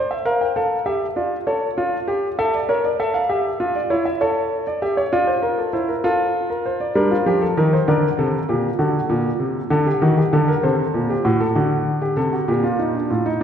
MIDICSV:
0, 0, Header, 1, 2, 480
1, 0, Start_track
1, 0, Tempo, 609137
1, 2598, Time_signature, 12, 3, 24, 8
1, 5484, Tempo, 614754
1, 10538, End_track
2, 0, Start_track
2, 0, Title_t, "Grand piano"
2, 0, Program_c, 0, 0
2, 0, Note_on_c, 0, 72, 72
2, 0, Note_on_c, 0, 74, 60
2, 79, Note_off_c, 0, 74, 0
2, 84, Note_on_c, 0, 76, 61
2, 111, Note_off_c, 0, 72, 0
2, 200, Note_off_c, 0, 76, 0
2, 201, Note_on_c, 0, 70, 81
2, 202, Note_on_c, 0, 77, 67
2, 318, Note_off_c, 0, 77, 0
2, 324, Note_on_c, 0, 79, 60
2, 350, Note_off_c, 0, 70, 0
2, 439, Note_off_c, 0, 79, 0
2, 442, Note_on_c, 0, 69, 78
2, 442, Note_on_c, 0, 77, 62
2, 590, Note_off_c, 0, 69, 0
2, 590, Note_off_c, 0, 77, 0
2, 676, Note_on_c, 0, 67, 69
2, 677, Note_on_c, 0, 76, 65
2, 826, Note_off_c, 0, 67, 0
2, 826, Note_off_c, 0, 76, 0
2, 916, Note_on_c, 0, 74, 57
2, 918, Note_on_c, 0, 65, 66
2, 1066, Note_off_c, 0, 74, 0
2, 1067, Note_off_c, 0, 65, 0
2, 1157, Note_on_c, 0, 69, 78
2, 1158, Note_on_c, 0, 73, 61
2, 1306, Note_off_c, 0, 69, 0
2, 1400, Note_on_c, 0, 65, 79
2, 1548, Note_off_c, 0, 65, 0
2, 1636, Note_on_c, 0, 67, 78
2, 1785, Note_off_c, 0, 67, 0
2, 1856, Note_off_c, 0, 73, 0
2, 1880, Note_on_c, 0, 76, 70
2, 1881, Note_on_c, 0, 69, 93
2, 1996, Note_off_c, 0, 76, 0
2, 2005, Note_on_c, 0, 74, 59
2, 2029, Note_off_c, 0, 69, 0
2, 2118, Note_on_c, 0, 70, 81
2, 2119, Note_off_c, 0, 74, 0
2, 2121, Note_on_c, 0, 73, 67
2, 2236, Note_off_c, 0, 73, 0
2, 2239, Note_on_c, 0, 74, 63
2, 2267, Note_off_c, 0, 70, 0
2, 2355, Note_off_c, 0, 74, 0
2, 2361, Note_on_c, 0, 69, 82
2, 2362, Note_on_c, 0, 76, 68
2, 2475, Note_on_c, 0, 77, 71
2, 2476, Note_off_c, 0, 76, 0
2, 2509, Note_off_c, 0, 69, 0
2, 2593, Note_off_c, 0, 77, 0
2, 2595, Note_on_c, 0, 76, 66
2, 2597, Note_on_c, 0, 67, 72
2, 2746, Note_off_c, 0, 67, 0
2, 2837, Note_on_c, 0, 65, 78
2, 2946, Note_off_c, 0, 76, 0
2, 2958, Note_on_c, 0, 74, 62
2, 2986, Note_off_c, 0, 65, 0
2, 3074, Note_off_c, 0, 74, 0
2, 3075, Note_on_c, 0, 64, 80
2, 3075, Note_on_c, 0, 73, 66
2, 3193, Note_off_c, 0, 73, 0
2, 3195, Note_on_c, 0, 76, 65
2, 3225, Note_off_c, 0, 64, 0
2, 3313, Note_off_c, 0, 76, 0
2, 3317, Note_on_c, 0, 73, 67
2, 3319, Note_on_c, 0, 69, 83
2, 3668, Note_off_c, 0, 73, 0
2, 3680, Note_on_c, 0, 74, 66
2, 3785, Note_off_c, 0, 69, 0
2, 3796, Note_off_c, 0, 74, 0
2, 3799, Note_on_c, 0, 67, 79
2, 3800, Note_on_c, 0, 76, 59
2, 3916, Note_off_c, 0, 76, 0
2, 3918, Note_on_c, 0, 73, 70
2, 3947, Note_off_c, 0, 67, 0
2, 4035, Note_off_c, 0, 73, 0
2, 4038, Note_on_c, 0, 74, 67
2, 4040, Note_on_c, 0, 65, 90
2, 4154, Note_off_c, 0, 74, 0
2, 4155, Note_on_c, 0, 72, 63
2, 4273, Note_off_c, 0, 72, 0
2, 4275, Note_on_c, 0, 70, 66
2, 4393, Note_off_c, 0, 70, 0
2, 4398, Note_on_c, 0, 69, 53
2, 4504, Note_off_c, 0, 65, 0
2, 4515, Note_off_c, 0, 69, 0
2, 4517, Note_on_c, 0, 64, 69
2, 4517, Note_on_c, 0, 72, 60
2, 4634, Note_off_c, 0, 72, 0
2, 4638, Note_on_c, 0, 70, 60
2, 4666, Note_off_c, 0, 64, 0
2, 4755, Note_off_c, 0, 70, 0
2, 4758, Note_on_c, 0, 69, 67
2, 4760, Note_on_c, 0, 65, 89
2, 5109, Note_off_c, 0, 69, 0
2, 5122, Note_on_c, 0, 70, 63
2, 5238, Note_off_c, 0, 70, 0
2, 5245, Note_on_c, 0, 72, 62
2, 5360, Note_off_c, 0, 72, 0
2, 5361, Note_on_c, 0, 74, 63
2, 5461, Note_off_c, 0, 65, 0
2, 5478, Note_off_c, 0, 74, 0
2, 5480, Note_on_c, 0, 55, 85
2, 5480, Note_on_c, 0, 62, 70
2, 5481, Note_on_c, 0, 70, 75
2, 5597, Note_off_c, 0, 62, 0
2, 5603, Note_on_c, 0, 65, 70
2, 5628, Note_off_c, 0, 55, 0
2, 5718, Note_off_c, 0, 65, 0
2, 5720, Note_on_c, 0, 53, 78
2, 5722, Note_on_c, 0, 67, 76
2, 5837, Note_off_c, 0, 67, 0
2, 5839, Note_on_c, 0, 69, 70
2, 5869, Note_off_c, 0, 53, 0
2, 5954, Note_off_c, 0, 70, 0
2, 5956, Note_off_c, 0, 69, 0
2, 5963, Note_on_c, 0, 51, 81
2, 5966, Note_on_c, 0, 70, 78
2, 6079, Note_off_c, 0, 70, 0
2, 6086, Note_on_c, 0, 72, 68
2, 6110, Note_off_c, 0, 51, 0
2, 6199, Note_off_c, 0, 72, 0
2, 6201, Note_on_c, 0, 70, 78
2, 6201, Note_on_c, 0, 74, 69
2, 6202, Note_on_c, 0, 50, 86
2, 6349, Note_off_c, 0, 70, 0
2, 6350, Note_off_c, 0, 50, 0
2, 6442, Note_on_c, 0, 48, 83
2, 6442, Note_on_c, 0, 69, 67
2, 6590, Note_off_c, 0, 48, 0
2, 6590, Note_off_c, 0, 69, 0
2, 6678, Note_on_c, 0, 67, 64
2, 6681, Note_on_c, 0, 46, 81
2, 6826, Note_off_c, 0, 67, 0
2, 6828, Note_off_c, 0, 46, 0
2, 6897, Note_off_c, 0, 74, 0
2, 6912, Note_on_c, 0, 50, 77
2, 6912, Note_on_c, 0, 66, 70
2, 6914, Note_on_c, 0, 69, 65
2, 7062, Note_off_c, 0, 50, 0
2, 7151, Note_on_c, 0, 46, 85
2, 7302, Note_off_c, 0, 46, 0
2, 7386, Note_on_c, 0, 48, 74
2, 7538, Note_off_c, 0, 48, 0
2, 7611, Note_off_c, 0, 66, 0
2, 7615, Note_off_c, 0, 69, 0
2, 7627, Note_on_c, 0, 50, 89
2, 7627, Note_on_c, 0, 69, 84
2, 7747, Note_off_c, 0, 69, 0
2, 7753, Note_on_c, 0, 67, 69
2, 7778, Note_off_c, 0, 50, 0
2, 7870, Note_off_c, 0, 67, 0
2, 7871, Note_on_c, 0, 51, 85
2, 7872, Note_on_c, 0, 66, 70
2, 7989, Note_off_c, 0, 66, 0
2, 7992, Note_on_c, 0, 67, 67
2, 8020, Note_off_c, 0, 51, 0
2, 8109, Note_off_c, 0, 67, 0
2, 8114, Note_on_c, 0, 50, 86
2, 8114, Note_on_c, 0, 69, 73
2, 8230, Note_off_c, 0, 69, 0
2, 8234, Note_on_c, 0, 70, 68
2, 8263, Note_off_c, 0, 50, 0
2, 8351, Note_off_c, 0, 70, 0
2, 8352, Note_on_c, 0, 69, 68
2, 8352, Note_on_c, 0, 72, 67
2, 8355, Note_on_c, 0, 48, 82
2, 8504, Note_off_c, 0, 48, 0
2, 8593, Note_on_c, 0, 46, 78
2, 8703, Note_off_c, 0, 69, 0
2, 8716, Note_on_c, 0, 67, 71
2, 8742, Note_off_c, 0, 46, 0
2, 8831, Note_on_c, 0, 66, 77
2, 8832, Note_off_c, 0, 67, 0
2, 8832, Note_on_c, 0, 45, 88
2, 8949, Note_off_c, 0, 66, 0
2, 8952, Note_on_c, 0, 69, 72
2, 8981, Note_off_c, 0, 45, 0
2, 9070, Note_off_c, 0, 69, 0
2, 9071, Note_on_c, 0, 66, 69
2, 9072, Note_on_c, 0, 50, 81
2, 9423, Note_off_c, 0, 66, 0
2, 9433, Note_on_c, 0, 67, 66
2, 9540, Note_off_c, 0, 50, 0
2, 9550, Note_on_c, 0, 48, 81
2, 9550, Note_on_c, 0, 69, 72
2, 9551, Note_off_c, 0, 67, 0
2, 9670, Note_off_c, 0, 69, 0
2, 9676, Note_on_c, 0, 66, 67
2, 9701, Note_off_c, 0, 48, 0
2, 9793, Note_off_c, 0, 66, 0
2, 9794, Note_on_c, 0, 46, 82
2, 9796, Note_on_c, 0, 67, 66
2, 9914, Note_off_c, 0, 67, 0
2, 9917, Note_on_c, 0, 65, 69
2, 10035, Note_off_c, 0, 65, 0
2, 10036, Note_on_c, 0, 63, 64
2, 10154, Note_off_c, 0, 63, 0
2, 10160, Note_on_c, 0, 62, 53
2, 10264, Note_off_c, 0, 46, 0
2, 10277, Note_off_c, 0, 62, 0
2, 10280, Note_on_c, 0, 65, 57
2, 10282, Note_on_c, 0, 45, 71
2, 10397, Note_off_c, 0, 65, 0
2, 10402, Note_on_c, 0, 63, 68
2, 10431, Note_off_c, 0, 45, 0
2, 10518, Note_off_c, 0, 63, 0
2, 10538, Note_off_c, 0, 72, 0
2, 10538, End_track
0, 0, End_of_file